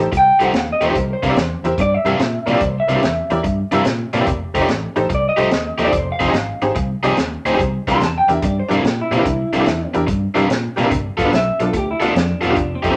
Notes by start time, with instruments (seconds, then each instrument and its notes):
0.12 fingered electric bass C2, muted overdriven electric guitar stroke, kick, closed hi-hat
0.17 clean electric guitar G5
0.40 fingered electric bass C2, overdriven electric guitar F3 A3 D#4 G4, honky-tonk piano D#4 G4 A4 C5, closed hi-hat
0.44 clean electric guitar F#5
0.53 fingered electric bass D#2, muted overdriven electric guitar stroke, snare, closed hi-hat
0.57 clean electric guitar F5
0.72 clean electric guitar D#5
0.80 fingered electric bass D#2, overdriven electric guitar F3 A3 D#4 G4, honky-tonk piano A4 C5, closed hi-hat
0.86 honky-tonk piano D#4 G4 A4 C5, clean electric guitar C5
0.95 fingered electric bass C2, muted overdriven electric guitar stroke, kick, closed hi-hat
1.00 clean electric guitar A#4
1.13 clean electric guitar C5
1.23 fingered electric bass C2, overdriven electric guitar C3 E3 A#3 D4, honky-tonk piano A#4 D5, kick, closed hi-hat
1.29 honky-tonk piano E4 G4 A#4 D5
1.36 fingered electric bass E2, muted overdriven electric guitar stroke, snare, closed hi-hat
1.63 fingered electric bass E2, honky-tonk piano E4 G4 A#4 C5, muted overdriven electric guitar stroke, closed hi-hat
1.78 fingered electric bass G2, clean electric guitar D5, muted overdriven electric guitar stroke, kick, closed hi-hat
1.94 clean electric guitar E5
2.04 fingered electric bass G2, overdriven electric guitar C3 E3 A#3 D4, honky-tonk piano E4 G4 A#4 E5, closed hi-hat
2.19 fingered electric bass A#2, muted overdriven electric guitar stroke, snare, closed hi-hat
2.46 fingered electric bass A#2, overdriven electric guitar C3 E3 A#3 D4, honky-tonk piano A#4 D5, clean electric guitar D5, closed hi-hat
2.53 honky-tonk piano E4 G4 A#4 D5
2.60 fingered electric bass C2, muted overdriven electric guitar stroke, kick, closed hi-hat
2.65 clean electric guitar C5
2.80 clean electric guitar E5
2.88 fingered electric bass C2, overdriven electric guitar C3 E3 A#3 D4, honky-tonk piano A#4 D5, closed hi-hat
2.95 honky-tonk piano E4 G4 A#4 D5
3.02 fingered electric bass E2, muted overdriven electric guitar stroke, snare, closed hi-hat
3.30 fingered electric bass E2, honky-tonk piano E4 G4 A#4 D5, muted overdriven electric guitar stroke, closed hi-hat
3.44 fingered electric bass G2, muted overdriven electric guitar stroke, kick, closed hi-hat
3.71 fingered electric bass G2, overdriven electric guitar C3 E3 A#3 D4, honky-tonk piano E4 G4 A#4 E5, closed hi-hat
3.85 fingered electric bass A#2, muted overdriven electric guitar stroke, snare, closed hi-hat
4.13 fingered electric bass A#2, overdriven electric guitar C3 E3 A#3 D4, honky-tonk piano A#4 D5, closed hi-hat
4.20 honky-tonk piano E4 G4 A#4 D5
4.26 fingered electric bass F1, muted overdriven electric guitar stroke, kick, closed hi-hat
4.54 fingered electric bass F1, overdriven electric guitar F3 A3 D#4 G4, honky-tonk piano A4 C5, kick, closed hi-hat
4.61 honky-tonk piano D#4 G4 A4 D5
4.68 fingered electric bass A1, muted overdriven electric guitar stroke, snare, closed hi-hat
4.96 fingered electric bass A1, honky-tonk piano D#4 G4 A4 C5, muted overdriven electric guitar stroke, closed hi-hat
5.10 fingered electric bass C2, muted overdriven electric guitar stroke, kick, closed hi-hat
5.15 clean electric guitar D5
5.29 clean electric guitar D#5
5.37 fingered electric bass C2, overdriven electric guitar F3 A3 D#4 G4, honky-tonk piano D#4 G4 A4 C5, closed hi-hat
5.51 fingered electric bass D#2, muted overdriven electric guitar stroke, snare, closed hi-hat
5.78 fingered electric bass D#2, overdriven electric guitar F3 A3 D#4 G4, honky-tonk piano A4 D#5, closed hi-hat
5.84 honky-tonk piano D#4 G4 A4 C5, clean electric guitar D5
5.92 fingered electric bass F1, muted overdriven electric guitar stroke, kick, closed hi-hat
5.98 clean electric guitar C5
6.12 clean electric guitar F5
6.19 fingered electric bass F1, overdriven electric guitar F3 C4 D#4 G#4, honky-tonk piano G#4 C5, kick, snare, closed hi-hat
6.28 honky-tonk piano D#4 G4 G#4 D#5
6.33 fingered electric bass G#1, muted overdriven electric guitar stroke, snare, closed hi-hat
6.61 fingered electric bass G#1, honky-tonk piano D#4 G4 G#4 C5, muted overdriven electric guitar stroke, closed hi-hat
6.75 fingered electric bass C2, muted overdriven electric guitar stroke, kick, closed hi-hat
7.03 fingered electric bass C2, overdriven electric guitar F3 C4 D#4 G#4, honky-tonk piano D#4 G4 G#4 D5, closed hi-hat
7.17 fingered electric bass D#2, muted overdriven electric guitar stroke, snare, closed hi-hat
7.45 fingered electric bass D2, overdriven electric guitar F3 C4 D#4 G#4, honky-tonk piano G#4 C5, closed hi-hat
7.53 honky-tonk piano D#4 G4 G#4 C5
7.59 fingered electric bass C2, muted overdriven electric guitar stroke, kick, closed hi-hat
7.87 fingered electric bass C2, overdriven electric guitar C3 E3 A#3 D4, honky-tonk piano G4 A#4, kick, snare, closed hi-hat
7.92 honky-tonk piano D4 E4 G4 A#4, clean electric guitar C6
8.00 fingered electric bass E2, muted overdriven electric guitar stroke, snare, closed hi-hat
8.05 clean electric guitar A5
8.18 clean electric guitar G5
8.28 fingered electric bass E2, honky-tonk piano D4 E4 G4 A#4, clean electric guitar E5, muted overdriven electric guitar stroke, closed hi-hat
8.42 fingered electric bass G2, clean electric guitar D5, muted overdriven electric guitar stroke, kick, closed hi-hat
8.60 clean electric guitar C5
8.69 fingered electric bass G2, overdriven electric guitar C3 E3 A#3 D4, honky-tonk piano D4 E4 G4 A#4, closed hi-hat
8.73 clean electric guitar A4
8.83 fingered electric bass A#2, clean electric guitar G4, muted overdriven electric guitar stroke, snare, closed hi-hat
9.01 clean electric guitar E4
9.11 fingered electric bass A#2, overdriven electric guitar C3 E3 A#3 D4, honky-tonk piano G4 C5, closed hi-hat
9.15 honky-tonk piano D4 E4 G4 A#4, clean electric guitar E4
9.25 fingered electric bass C2, muted overdriven electric guitar stroke, kick, closed hi-hat
9.53 fingered electric bass C2, overdriven electric guitar C3 E3 A#3 D4, honky-tonk piano G4 A4, closed hi-hat
9.59 honky-tonk piano D4 E4 G4 A4
9.66 fingered electric bass E2, muted overdriven electric guitar stroke, snare, closed hi-hat
9.94 fingered electric bass E2, honky-tonk piano D4 E4 G4 A#4, muted overdriven electric guitar stroke, closed hi-hat
10.07 fingered electric bass G2, muted overdriven electric guitar stroke, kick, closed hi-hat
10.35 fingered electric bass G2, overdriven electric guitar C3 E3 A#3 D4, honky-tonk piano D4 E4 G4 A#4, closed hi-hat
10.48 fingered electric bass A#2, muted overdriven electric guitar stroke, snare, closed hi-hat
10.76 fingered electric bass A#2, overdriven electric guitar C3 E3 A#3 D4, honky-tonk piano G4 A#4, closed hi-hat
10.83 honky-tonk piano D4 E4 G4 A#4
10.90 fingered electric bass G1, muted overdriven electric guitar stroke, kick, closed hi-hat
11.17 fingered electric bass G1, overdriven electric guitar G3 B3 F4 A4, honky-tonk piano F4 A4, kick, closed hi-hat
11.25 honky-tonk piano B3 D4 F4 B4
11.31 fingered electric bass B1, clean electric guitar E5, muted overdriven electric guitar stroke, snare, closed hi-hat
11.60 fingered electric bass B1, honky-tonk piano B3 D4 F4 A4, clean electric guitar A4, muted overdriven electric guitar stroke, closed hi-hat
11.73 fingered electric bass D2, clean electric guitar G4, muted overdriven electric guitar stroke, kick, closed hi-hat
11.91 clean electric guitar E4
12.00 fingered electric bass D2, overdriven electric guitar G3 B3 F4 A4, honky-tonk piano B3 D4 F4 A4, closed hi-hat
12.05 clean electric guitar D4
12.14 fingered electric bass F2, muted overdriven electric guitar stroke, snare, closed hi-hat
12.41 fingered electric bass E1, overdriven electric guitar G3 B3 F4 A4, honky-tonk piano F4 A4, closed hi-hat
12.47 honky-tonk piano B3 D4 F4 G4, clean electric guitar D4
12.56 fingered electric bass F1, muted overdriven electric guitar stroke, kick, closed hi-hat
12.75 clean electric guitar C4
12.83 fingered electric bass F1, overdriven electric guitar F3 A3 D#4 G4, honky-tonk piano G4 A4, kick, closed hi-hat
12.90 honky-tonk piano C4 D#4 G4 C5